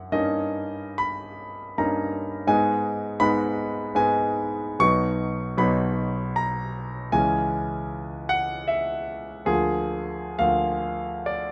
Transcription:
0.00 0.16 F#2 soft
0.00 0.12 A#3 soft
0.00 0.13 C#4 soft
0.00 0.15 E4 soft
0.00 0.12 F#5 medium
0.12 1.74 G2 soft
0.12 1.74 A#3 soft
0.12 1.74 C#4 soft
0.12 1.74 D#4 soft
0.12 1.00 D#5 medium
0.98 1.77 B5 medium
1.78 2.48 G2 soft
1.78 2.48 A#3 soft
1.78 2.48 C#4 soft
1.78 2.47 D#4 soft
1.78 2.50 A#5 medium
2.47 3.18 G#2 soft
2.47 3.19 G#3 soft
2.47 3.19 B3 soft
2.47 3.19 D#4 soft
2.47 3.21 G#5 medium
3.20 3.93 G#2 soft
3.20 3.93 G#3 soft
3.20 3.93 B3 soft
3.20 3.94 D#4 soft
3.20 3.95 B5 medium
3.95 4.78 G#2 soft
3.95 4.78 G#3 soft
3.95 4.78 B3 soft
3.95 4.79 D#4 soft
3.95 4.81 G#5 medium
4.79 5.56 B1 soft
4.79 5.56 F#3 soft
4.79 5.57 B3 soft
4.79 5.57 D#4 soft
4.79 5.60 C#6 medium
5.57 7.10 B1 soft
5.57 7.10 F#3 soft
5.57 7.10 B3 soft
5.57 7.10 D#4 soft
5.57 6.37 B5 medium
6.36 7.14 A#5 medium
7.12 9.43 C#2 soft
7.12 9.43 E3 soft
7.12 9.43 G#3 soft
7.12 9.43 C#4 soft
7.12 8.30 G#5 medium
8.29 8.69 F#5 medium
8.68 9.08 E5 medium
9.45 10.36 D2 soft
9.45 10.36 F3 soft
9.45 10.36 A#3 soft
9.45 10.36 F4 soft
9.45 10.39 G#4 medium
10.39 11.52 D2 soft
10.39 11.52 F3 soft
10.39 11.52 A#3 soft
10.39 11.52 F4 soft
10.39 11.27 F5 medium
11.26 11.52 D5 medium

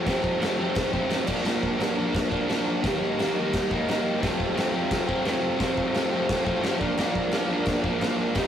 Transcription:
0.04 0.38 F2 medium
0.04 0.39 C3 loud
0.04 0.41 F3 loud
0.04 0.41 A3 loud
0.04 kick loud
0.04 snare loud
0.04 crash medium
0.09 0.43 C4 loud
0.24 kick medium
0.39 0.75 F2 loud
0.39 0.76 C3 loud
0.39 0.61 F3 loud
0.39 0.59 A3 loud
0.39 snare loud
0.39 crash medium
0.44 0.57 C4 loud
0.58 0.96 F3 medium
0.58 0.94 A3 medium
0.58 0.92 C4 medium
0.75 kick loud
0.75 snare loud
0.75 crash medium
0.93 1.09 F3 medium
0.93 1.11 A3 medium
0.93 1.12 C4 medium
0.93 kick medium
1.09 1.26 C3 medium
1.09 1.27 F3 medium
1.09 1.28 A3 medium
1.09 snare loud
1.09 crash medium
1.13 1.26 C4 medium
1.27 1.43 F3 medium
1.27 1.46 A#3 medium
1.27 1.46 D4 loud
1.27 kick loud
1.27 crash loud
1.31 1.41 A#2 medium
1.43 1.76 A#2 loud
1.43 1.78 F3 loud
1.43 1.80 A#3 loud
1.43 snare loud
1.43 crash medium
1.48 1.81 D4 loud
1.63 kick medium
1.77 2.14 A#2 loud
1.77 1.99 F3 loud
1.77 1.98 A#3 loud
1.77 crash medium
1.82 1.95 D4 loud
1.82 snare loud
1.96 2.33 F3 medium
1.96 2.31 A#3 medium
1.96 2.29 D4 medium
2.15 kick loud
2.15 snare loud
2.15 crash medium
2.30 2.49 A#3 medium
2.30 2.51 D4 medium
2.30 kick medium
2.35 2.48 F3 medium
2.47 2.82 A#2 medium
2.47 2.83 F3 medium
2.47 2.84 A#3 medium
2.47 snare loud
2.47 crash medium
2.52 2.84 D4 medium
2.82 3.16 D#3 loud
2.82 3.18 G3 loud
2.82 3.19 A#3 loud
2.82 kick loud
2.82 snare loud
2.82 crash medium
2.87 3.21 D#4 loud
3.17 3.53 D#3 medium
3.17 3.39 G3 loud
3.17 3.37 A#3 loud
3.17 snare loud
3.17 crash medium
3.22 3.35 D#4 loud
3.36 3.71 A#3 medium
3.36 3.69 D#4 medium
3.40 3.73 G3 medium
3.53 kick loud
3.53 snare loud
3.53 crash medium
3.70 3.87 G3 medium
3.70 3.89 A#3 medium
3.70 3.90 D#4 medium
3.70 kick medium
3.88 4.21 D#3 medium
3.88 4.22 G3 medium
3.88 4.23 A#3 medium
3.88 4.23 D#4 medium
3.88 snare loud
3.88 crash medium
4.20 4.54 F2 loud
4.20 4.54 C3 loud
4.20 4.56 F3 loud
4.20 4.57 A3 loud
4.20 6.78 A4 medium
4.20 6.78 C5 medium
4.20 kick loud
4.20 crash medium
4.24 4.58 C4 loud
4.24 6.79 F5 medium
4.24 snare loud
4.40 kick medium
4.54 4.90 F2 loud
4.54 4.91 C3 medium
4.54 4.76 F3 loud
4.54 4.73 A3 loud
4.54 crash medium
4.59 4.71 C4 loud
4.59 snare loud
4.73 5.11 F3 medium
4.73 5.08 A3 medium
4.73 5.05 C4 medium
4.91 kick loud
4.91 snare loud
4.91 crash medium
5.06 5.26 A3 medium
5.06 5.28 C4 medium
5.06 kick medium
5.11 5.26 F3 medium
5.24 5.58 C3 medium
5.24 5.59 F3 medium
5.24 5.60 A3 medium
5.24 snare loud
5.24 crash medium
5.29 5.61 C4 medium
5.58 5.92 F2 loud
5.58 5.93 C3 loud
5.58 5.94 F3 loud
5.58 5.95 A3 loud
5.58 kick loud
5.58 snare loud
5.58 crash medium
5.62 5.96 C4 loud
5.77 kick medium
5.93 6.28 F2 loud
5.93 6.29 C3 loud
5.93 6.14 F3 loud
5.93 6.12 A3 loud
5.93 snare loud
5.93 crash medium
5.97 6.09 C4 loud
6.10 6.47 F3 medium
6.10 6.45 A3 medium
6.10 6.43 C4 medium
6.29 kick loud
6.29 snare loud
6.29 crash medium
6.44 6.62 F3 medium
6.44 6.64 A3 medium
6.44 6.65 C4 medium
6.44 kick medium
6.61 6.79 C3 medium
6.61 6.80 F3 medium
6.61 6.80 A3 medium
6.61 snare loud
6.61 crash medium
6.66 6.78 C4 medium
6.79 6.97 A#2 medium
6.79 6.98 F3 medium
6.79 7.00 A#3 medium
6.79 7.00 D4 loud
6.79 8.33 A#4 medium
6.79 8.33 D5 medium
6.79 kick loud
6.83 8.34 F5 medium
6.97 7.30 A#2 loud
6.97 7.32 F3 loud
6.97 7.33 A#3 loud
6.97 7.34 D4 loud
6.97 snare loud
6.97 crash medium
7.15 kick medium
7.31 7.66 A#2 loud
7.31 7.52 F3 loud
7.31 7.49 A#3 loud
7.31 snare loud
7.31 crash medium
7.35 7.47 D4 loud
7.48 7.84 A#3 medium
7.48 7.81 D4 medium
7.53 7.85 F3 medium
7.66 kick loud
7.66 snare loud
7.66 crash medium
7.82 8.02 A#3 medium
7.82 8.03 D4 medium
7.82 kick medium
7.87 8.01 F3 medium
8.00 8.34 A#2 medium
8.00 8.35 F3 medium
8.00 8.36 A#3 medium
8.00 snare loud
8.00 crash medium
8.04 8.36 D4 medium
8.34 8.47 D#3 medium
8.34 8.47 G3 loud
8.34 8.47 A#3 loud
8.34 8.47 A#4 medium
8.34 8.47 D#5 medium
8.34 8.47 G5 medium
8.34 kick loud
8.34 snare loud
8.34 crash medium
8.38 8.47 D#4 loud

